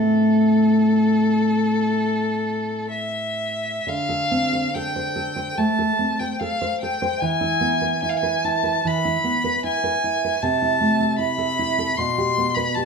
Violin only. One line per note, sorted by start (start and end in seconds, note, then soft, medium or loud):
0.00 2.90 A4 medium
2.90 3.90 E5 medium
3.88 4.75 F5 loud
4.74 5.59 G5 medium
5.58 6.21 A5 medium
6.19 6.41 G5 medium
6.39 6.80 F5 medium
6.81 7.22 G5 medium
7.20 8.01 G#5 loud
8.02 8.11 G#5 medium
8.09 8.18 F5 medium
8.17 8.46 G#5 medium
8.45 8.88 A5 medium
8.87 9.65 B5 medium
9.65 10.44 G#5 medium
10.42 11.18 A5 medium
11.19 11.99 B5 loud
11.97 12.56 C6 loud
12.54 12.76 B5 medium
12.75 12.85 A5 medium